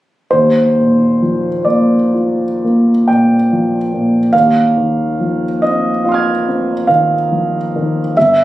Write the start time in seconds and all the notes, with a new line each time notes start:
0.31 D#2 C5
0.78 A#2
1.22 F3
1.65 A#3 D5
2.14 F4
2.64 A#3
3.08 A#2 G5
3.53 F3
3.93 A#2
4.33 D#2 F5
4.77 D#3
5.20 F3
5.62 C4 D#5
6.05 F4 F5
6.09 C6 F6
6.14 G#6
6.48 C4
6.87 D#3 F5
7.32 F3
7.76 D#3
8.17 G1 E5